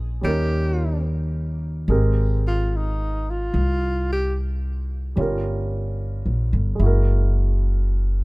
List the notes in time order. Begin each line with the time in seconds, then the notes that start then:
Already playing: A#1 G#3 C#4 F4 A#4
0.21 D#2 G3 C#4 D#4 G4
0.27 A#4
1.88 G#1 G#3 C4 G4 A#4
2.48 F4
2.77 D#4
3.31 F4
3.54 C2
4.12 G4
5.16 G1 G3 C#4 F4
5.21 A#4
6.26 A#1
6.53 G1
6.75 G#3 E4
6.80 F#1 F#4
6.86 A#4